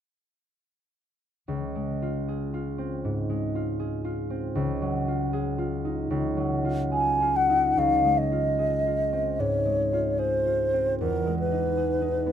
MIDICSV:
0, 0, Header, 1, 3, 480
1, 0, Start_track
1, 0, Key_signature, -5, "major"
1, 0, Tempo, 804290
1, 884, Time_signature, 4, 2, 24, 8
1, 1357, Tempo, 766284
1, 3757, Tempo, 832178
1, 5197, Tempo, 802139
1, 6637, Tempo, 756620
1, 7469, End_track
2, 0, Start_track
2, 0, Title_t, "Flute"
2, 0, Program_c, 0, 73
2, 4227, Note_on_c, 0, 80, 50
2, 4482, Note_on_c, 0, 78, 46
2, 4491, Note_off_c, 0, 80, 0
2, 4724, Note_on_c, 0, 77, 46
2, 4733, Note_off_c, 0, 78, 0
2, 4952, Note_on_c, 0, 75, 47
2, 4961, Note_off_c, 0, 77, 0
2, 5677, Note_on_c, 0, 73, 44
2, 5686, Note_off_c, 0, 75, 0
2, 6147, Note_on_c, 0, 72, 45
2, 6156, Note_off_c, 0, 73, 0
2, 6626, Note_off_c, 0, 72, 0
2, 6630, Note_on_c, 0, 70, 44
2, 6873, Note_off_c, 0, 70, 0
2, 6880, Note_on_c, 0, 71, 47
2, 7469, Note_off_c, 0, 71, 0
2, 7469, End_track
3, 0, Start_track
3, 0, Title_t, "Harp"
3, 0, Program_c, 1, 46
3, 883, Note_on_c, 1, 37, 31
3, 1046, Note_on_c, 1, 56, 24
3, 1206, Note_on_c, 1, 65, 27
3, 1363, Note_on_c, 1, 68, 27
3, 1513, Note_off_c, 1, 65, 0
3, 1521, Note_on_c, 1, 65, 26
3, 1676, Note_on_c, 1, 60, 28
3, 1840, Note_on_c, 1, 44, 28
3, 1989, Note_off_c, 1, 56, 0
3, 1996, Note_on_c, 1, 56, 28
3, 2149, Note_off_c, 1, 65, 0
3, 2157, Note_on_c, 1, 65, 31
3, 2303, Note_off_c, 1, 68, 0
3, 2310, Note_on_c, 1, 68, 32
3, 2459, Note_off_c, 1, 65, 0
3, 2466, Note_on_c, 1, 65, 33
3, 2620, Note_off_c, 1, 60, 0
3, 2627, Note_on_c, 1, 60, 34
3, 2777, Note_off_c, 1, 37, 0
3, 2785, Note_on_c, 1, 37, 41
3, 2804, Note_off_c, 1, 44, 0
3, 2805, Note_off_c, 1, 60, 0
3, 2949, Note_on_c, 1, 54, 33
3, 3104, Note_off_c, 1, 65, 0
3, 3112, Note_on_c, 1, 65, 34
3, 3264, Note_off_c, 1, 68, 0
3, 3272, Note_on_c, 1, 68, 40
3, 3422, Note_off_c, 1, 65, 0
3, 3429, Note_on_c, 1, 65, 37
3, 3596, Note_on_c, 1, 63, 33
3, 3749, Note_off_c, 1, 37, 0
3, 3757, Note_on_c, 1, 37, 42
3, 3902, Note_off_c, 1, 54, 0
3, 3909, Note_on_c, 1, 54, 34
3, 4062, Note_off_c, 1, 65, 0
3, 4069, Note_on_c, 1, 65, 37
3, 4219, Note_off_c, 1, 68, 0
3, 4226, Note_on_c, 1, 68, 36
3, 4385, Note_off_c, 1, 56, 0
3, 4388, Note_off_c, 1, 65, 0
3, 4395, Note_on_c, 1, 65, 32
3, 4551, Note_off_c, 1, 63, 0
3, 4558, Note_on_c, 1, 63, 34
3, 4711, Note_off_c, 1, 37, 0
3, 4718, Note_on_c, 1, 37, 34
3, 4741, Note_off_c, 1, 63, 0
3, 4744, Note_off_c, 1, 54, 0
3, 4874, Note_on_c, 1, 56, 28
3, 5025, Note_off_c, 1, 65, 0
3, 5032, Note_on_c, 1, 65, 30
3, 5183, Note_off_c, 1, 68, 0
3, 5189, Note_on_c, 1, 68, 31
3, 5345, Note_off_c, 1, 65, 0
3, 5352, Note_on_c, 1, 65, 28
3, 5511, Note_on_c, 1, 60, 29
3, 5670, Note_on_c, 1, 44, 32
3, 5818, Note_off_c, 1, 56, 0
3, 5825, Note_on_c, 1, 56, 28
3, 5984, Note_off_c, 1, 65, 0
3, 5991, Note_on_c, 1, 65, 33
3, 6139, Note_off_c, 1, 68, 0
3, 6146, Note_on_c, 1, 68, 33
3, 6303, Note_off_c, 1, 65, 0
3, 6310, Note_on_c, 1, 65, 29
3, 6467, Note_off_c, 1, 60, 0
3, 6474, Note_on_c, 1, 60, 30
3, 6637, Note_on_c, 1, 40, 37
3, 6651, Note_off_c, 1, 37, 0
3, 6653, Note_off_c, 1, 65, 0
3, 6654, Note_off_c, 1, 44, 0
3, 6654, Note_off_c, 1, 60, 0
3, 6788, Note_off_c, 1, 56, 0
3, 6795, Note_on_c, 1, 56, 30
3, 6961, Note_on_c, 1, 63, 30
3, 7113, Note_off_c, 1, 68, 0
3, 7121, Note_on_c, 1, 68, 30
3, 7267, Note_off_c, 1, 63, 0
3, 7274, Note_on_c, 1, 63, 31
3, 7433, Note_on_c, 1, 59, 31
3, 7469, Note_off_c, 1, 40, 0
3, 7469, Note_off_c, 1, 56, 0
3, 7469, Note_off_c, 1, 59, 0
3, 7469, Note_off_c, 1, 63, 0
3, 7469, Note_off_c, 1, 68, 0
3, 7469, End_track
0, 0, End_of_file